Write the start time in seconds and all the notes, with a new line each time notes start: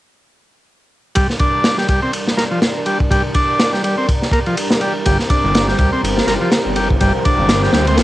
1.15 G3 D4 A#4, kick, ride
1.30 snare
1.39 D4, kick, ride
1.64 snare, ride
1.78 G3, snare
1.89 G3, kick, ride
2.02 C4
2.13 ride
2.28 snare
2.37 A#3, snare, ride
2.51 F3
2.62 snare, ride
2.86 G3, ride
3.00 kick
3.11 G3, kick, ride
3.34 D4, kick, ride
3.60 snare, ride
3.73 G3, snare
3.84 G3, ride
3.98 C4
4.09 kick, ride
4.22 snare
4.31 A#3, kick, ride
4.46 F3, ride
4.57 ride
4.71 snare
4.81 G3, ride
5.06 G1 G3 C4, kick, ride, riser
5.19 snare
5.30 D4, kick, ride
5.44 G1
5.55 snare, ride
5.68 G3, snare
5.79 D2 G3, kick, ride
5.93 C4
6.03 G1, ride
6.18 snare
6.27 G1 A#3, snare, ride
6.41 F3
6.52 snare, ride
6.66 G1
6.76 G3, ride
6.90 kick
7.01 G1 G3, kick, ride
7.25 D4, kick, ride
7.39 G1
7.49 snare, ride
7.63 G3, snare
7.73 D2 G3, snare
7.87 C4, ride
7.98 F1, snare, ride